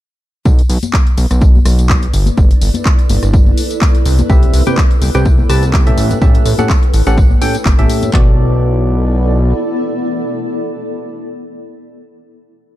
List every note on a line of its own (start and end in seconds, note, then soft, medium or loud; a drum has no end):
0.45 0.62 B1 medium
0.45 8.14 B4 medium
0.45 kick loud
0.45 tambourine medium
0.45 tambourine soft
0.59 closed hi-hat soft
0.59 tambourine soft
0.66 0.78 B1 medium
0.66 8.14 E4 medium
0.66 open hi-hat medium
0.66 tambourine medium
0.83 closed hi-hat medium
0.83 tambourine medium
0.83 tambourine soft
0.83 high conga medium
0.93 kick loud
0.93 clap loud
0.93 tambourine medium
0.93 tambourine soft
1.02 5.98 D5 medium
1.07 closed hi-hat soft
1.07 tambourine soft
1.18 1.26 B1 medium
1.18 8.14 A4 medium
1.18 open hi-hat medium
1.18 tambourine medium
1.31 1.59 B1 medium
1.31 cross-stick medium
1.31 closed hi-hat medium
1.31 tambourine medium
1.31 tambourine soft
1.41 kick loud
1.41 tambourine medium
1.41 tambourine soft
1.55 tambourine soft
1.55 high conga medium
1.65 2.07 B1 medium
1.65 cross-stick medium
1.65 open hi-hat medium
1.65 tambourine medium
1.79 closed hi-hat medium
1.79 tambourine soft
1.79 tambourine medium
1.89 kick medium
1.89 clap loud
1.89 tambourine medium
1.89 tambourine soft
1.89 high conga medium
2.02 closed hi-hat medium
2.02 tambourine soft
2.13 2.30 G1 medium
2.13 open hi-hat loud
2.13 tambourine medium
2.26 closed hi-hat medium
2.26 tambourine soft
2.26 tambourine medium
2.26 high conga medium
2.37 2.54 G1 medium
2.37 kick loud
2.37 tambourine medium
2.37 tambourine soft
2.50 closed hi-hat soft
2.50 tambourine soft
2.61 2.70 G1 medium
2.61 open hi-hat loud
2.61 tambourine medium
2.74 closed hi-hat medium
2.74 tambourine medium
2.74 tambourine soft
2.74 high conga medium
2.85 kick loud
2.85 clap loud
2.85 tambourine soft
2.85 tambourine medium
2.99 closed hi-hat soft
2.99 tambourine soft
3.09 3.18 G1 loud
3.09 open hi-hat loud
3.09 tambourine medium
3.09 high conga medium
3.23 3.51 G1 medium
3.23 cross-stick medium
3.23 closed hi-hat medium
3.23 tambourine medium
3.23 tambourine soft
3.33 kick loud
3.33 tambourine soft
3.33 tambourine medium
3.46 tambourine soft
3.46 high conga medium
3.57 open hi-hat loud
3.57 tambourine medium
3.70 closed hi-hat medium
3.70 tambourine medium
3.70 tambourine soft
3.81 kick loud
3.81 clap loud
3.81 tambourine medium
3.81 tambourine soft
3.81 high conga medium
3.95 closed hi-hat soft
3.95 tambourine soft
4.05 4.22 C2 loud
4.05 open hi-hat loud
4.05 tambourine medium
4.19 closed hi-hat medium
4.19 tambourine medium
4.19 tambourine soft
4.19 high conga loud
4.29 4.46 C2 medium
4.29 4.64 C3 medium
4.29 4.64 C4 medium
4.29 4.64 G4 medium
4.29 4.64 B4 medium
4.29 4.64 E5 medium
4.29 kick loud
4.29 tambourine soft
4.29 tambourine medium
4.43 closed hi-hat soft
4.43 tambourine soft
4.54 4.62 C2 loud
4.54 open hi-hat loud
4.54 tambourine medium
4.67 4.80 C3 medium
4.67 4.80 C4 medium
4.67 4.80 G4 medium
4.67 4.80 B4 medium
4.67 4.80 G5 medium
4.67 closed hi-hat medium
4.67 tambourine medium
4.67 tambourine soft
4.67 high conga medium
4.78 kick loud
4.78 clap loud
4.78 tambourine soft
4.78 tambourine medium
4.91 closed hi-hat soft
4.91 tambourine soft
5.02 5.10 C2 medium
5.02 open hi-hat loud
5.02 tambourine medium
5.02 high conga medium
5.14 5.43 C2 medium
5.14 5.28 C3 medium
5.14 5.28 C4 medium
5.14 5.28 G4 medium
5.14 5.28 B4 medium
5.14 5.28 G5 loud
5.14 cross-stick medium
5.14 closed hi-hat medium
5.14 tambourine medium
5.14 tambourine soft
5.25 kick loud
5.25 tambourine medium
5.25 tambourine soft
5.38 tambourine soft
5.38 high conga medium
5.49 5.91 C2 medium
5.49 5.65 C3 medium
5.49 5.65 C4 medium
5.49 5.65 G4 medium
5.49 5.65 B4 medium
5.49 5.65 A5 medium
5.49 cross-stick medium
5.49 open hi-hat loud
5.49 tambourine medium
5.63 closed hi-hat medium
5.63 tambourine soft
5.63 tambourine medium
5.73 kick loud
5.73 clap loud
5.73 tambourine medium
5.73 tambourine soft
5.73 high conga medium
5.86 6.19 A2 medium
5.86 6.19 C#4 medium
5.86 6.19 G4 medium
5.86 6.19 A4 medium
5.86 6.19 E5 medium
5.86 closed hi-hat soft
5.86 tambourine soft
5.98 6.14 A1 medium
5.98 open hi-hat loud
5.98 tambourine medium
6.11 closed hi-hat medium
6.11 tambourine soft
6.11 tambourine medium
6.11 high conga medium
6.22 6.38 A1 medium
6.22 6.56 A2 medium
6.22 6.56 C#4 medium
6.22 6.56 G4 medium
6.22 6.56 A4 medium
6.22 6.56 E5 medium
6.22 kick loud
6.22 tambourine soft
6.22 tambourine medium
6.35 closed hi-hat soft
6.35 tambourine soft
6.46 6.54 A1 medium
6.46 open hi-hat loud
6.46 tambourine medium
6.58 6.72 A2 medium
6.58 6.72 C#4 medium
6.58 6.72 G4 medium
6.58 6.72 A4 medium
6.58 6.72 F#5 loud
6.58 closed hi-hat medium
6.58 tambourine medium
6.58 tambourine soft
6.58 high conga medium
6.70 kick loud
6.70 clap loud
6.70 tambourine medium
6.70 tambourine soft
6.83 closed hi-hat soft
6.83 tambourine soft
6.94 7.02 A1 loud
6.94 8.14 C#5 medium
6.94 open hi-hat loud
6.94 tambourine medium
7.07 7.35 A1 medium
7.07 7.20 A2 medium
7.07 7.20 C#4 medium
7.07 7.20 G4 medium
7.07 7.20 A4 medium
7.07 7.20 F#5 loud
7.07 cross-stick medium
7.07 closed hi-hat medium
7.07 tambourine medium
7.07 tambourine soft
7.18 kick loud
7.18 tambourine soft
7.18 tambourine medium
7.30 tambourine soft
7.30 high conga medium
7.41 7.57 A2 medium
7.41 7.57 C#4 medium
7.41 7.57 G4 medium
7.41 7.57 A4 medium
7.41 7.57 G5 medium
7.41 open hi-hat loud
7.41 tambourine medium
7.54 closed hi-hat medium
7.54 tambourine medium
7.54 tambourine soft
7.65 7.74 G1 medium
7.65 kick loud
7.65 clap loud
7.65 tambourine medium
7.65 tambourine soft
7.65 high conga medium
7.79 7.86 A1 medium
7.79 8.11 A2 medium
7.79 8.11 C#4 medium
7.79 8.11 G4 medium
7.79 8.11 A4 medium
7.79 8.11 E5 loud
7.79 closed hi-hat soft
7.79 tambourine soft
7.89 open hi-hat loud
7.89 tambourine medium
8.02 closed hi-hat medium
8.02 tambourine medium
8.02 tambourine soft
8.02 high conga medium
8.13 9.54 B1 medium
8.13 11.30 B3 medium
8.13 11.30 F#4 medium
8.13 11.30 A4 medium
8.13 11.30 D5 medium
8.13 kick loud
8.13 clap medium
8.21 11.38 E4 medium
8.29 11.45 A4 medium
8.35 11.52 D5 medium